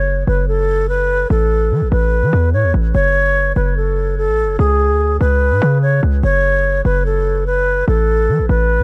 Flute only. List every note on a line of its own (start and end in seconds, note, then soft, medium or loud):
0.00 0.24 C#5 loud
0.27 0.46 B4 medium
0.48 0.87 A4 medium
0.89 1.28 B4 medium
1.30 1.88 A4 medium
1.92 2.50 B4 medium
2.54 2.72 C#5 medium
2.94 3.52 C#5 loud
3.56 3.75 B4 medium
3.77 4.15 A4 medium
4.18 4.56 A4 medium
4.59 5.17 G#4 medium
5.20 5.78 B4 medium
5.82 6.01 C#5 medium
6.23 6.81 C#5 loud
6.85 7.03 B4 medium
7.06 7.44 A4 medium
7.47 7.85 B4 medium
7.88 8.46 A4 medium
8.49 8.84 B4 medium